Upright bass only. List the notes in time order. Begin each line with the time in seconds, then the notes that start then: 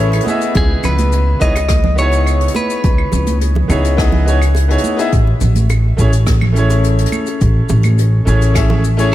Already playing: A1
0.55 C#2
0.84 C#2
1.41 C#2
2.84 C#2
3.12 C#2
3.69 C#2
5.13 A1
5.41 A1
5.99 A1
7.41 A1
7.70 A1
8.27 A1